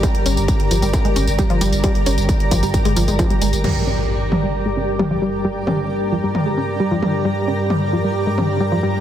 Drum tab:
CC |----------------|----------------|x---------------|----------------|
HH |xxoxxxoxxxoxxxox|xxoxxxoxxooxxxox|----------------|----------------|
TB |x-xxx-xxx-xxx-xx|x-xxx-xxx-xxx-xx|----------------|----------------|
T2 |----------------|----------------|o-----o-----o---|--o-----o-----o-|
BD |o---o---o---o---|o---o-o-o---o---|----------------|----------------|

CC |----------------|
HH |----------------|
TB |----------------|
T2 |----o-----o-----|
BD |----------------|